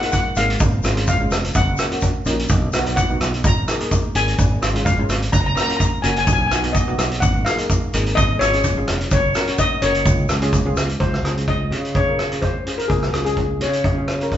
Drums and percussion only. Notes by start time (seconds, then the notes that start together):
0.03 closed hi-hat
0.12 kick, closed hi-hat, shaker
0.36 closed hi-hat, shaker
0.50 closed hi-hat
0.59 kick, closed hi-hat, shaker
0.83 cross-stick, closed hi-hat, shaker
0.97 closed hi-hat
1.07 kick, closed hi-hat, shaker
1.31 cross-stick, closed hi-hat, shaker
1.44 closed hi-hat
1.54 kick, closed hi-hat, shaker
1.77 cross-stick, closed hi-hat, shaker
1.92 closed hi-hat
2.01 kick, closed hi-hat, shaker
2.25 closed hi-hat, shaker
2.39 closed hi-hat
2.49 kick, closed hi-hat, shaker
2.72 cross-stick, closed hi-hat, shaker
2.86 closed hi-hat
2.97 kick, closed hi-hat, shaker
3.21 cross-stick, closed hi-hat, shaker
3.34 closed hi-hat
3.44 kick, closed hi-hat, shaker
3.68 cross-stick, closed hi-hat, shaker
3.80 closed hi-hat
3.91 kick, closed hi-hat, shaker
4.15 closed hi-hat, shaker
4.28 closed hi-hat
4.38 kick, closed hi-hat, shaker
4.62 cross-stick, closed hi-hat, shaker
4.75 closed hi-hat
4.86 kick, closed hi-hat, shaker
5.09 cross-stick, closed hi-hat, shaker
5.22 closed hi-hat
5.33 kick, closed hi-hat, shaker
5.57 cross-stick, closed hi-hat, shaker
5.70 closed hi-hat
5.80 kick, closed hi-hat, shaker
6.03 closed hi-hat, shaker
6.16 closed hi-hat
6.27 kick, closed hi-hat, shaker
6.51 cross-stick, closed hi-hat, shaker
6.64 closed hi-hat
6.75 kick, closed hi-hat, shaker
6.99 cross-stick, closed hi-hat, shaker
7.11 closed hi-hat
7.22 kick, closed hi-hat, shaker
7.46 cross-stick, closed hi-hat, shaker
7.58 closed hi-hat
7.70 kick, closed hi-hat, shaker
7.93 closed hi-hat, shaker
8.06 closed hi-hat
8.17 kick, closed hi-hat, shaker
8.41 cross-stick, closed hi-hat, shaker
8.53 closed hi-hat
8.64 kick, closed hi-hat, shaker
8.88 cross-stick, closed hi-hat
9.01 closed hi-hat
9.11 kick, closed hi-hat, shaker
9.34 cross-stick, closed hi-hat, shaker
9.47 closed hi-hat
9.58 kick, closed hi-hat, shaker
9.82 closed hi-hat, shaker
9.95 closed hi-hat
10.06 kick, closed hi-hat, shaker
10.29 cross-stick, closed hi-hat, shaker
10.42 closed hi-hat
10.53 kick, closed hi-hat, shaker
10.76 cross-stick, closed hi-hat, shaker
10.89 closed hi-hat
11.00 kick, closed hi-hat
11.14 cross-stick
11.25 cross-stick, closed hi-hat
11.37 closed hi-hat
11.48 kick, closed hi-hat
11.72 closed hi-hat
11.85 closed hi-hat
11.95 kick, closed hi-hat
12.19 cross-stick, closed hi-hat
12.32 closed hi-hat
12.42 kick, closed hi-hat
12.67 closed hi-hat
12.79 closed hi-hat
12.90 kick, closed hi-hat
13.03 cross-stick
13.14 cross-stick, closed hi-hat
13.26 closed hi-hat
13.37 kick, closed hi-hat
13.61 closed hi-hat
13.73 closed hi-hat
13.84 kick, closed hi-hat
14.08 cross-stick, closed hi-hat
14.21 closed hi-hat
14.32 kick, closed hi-hat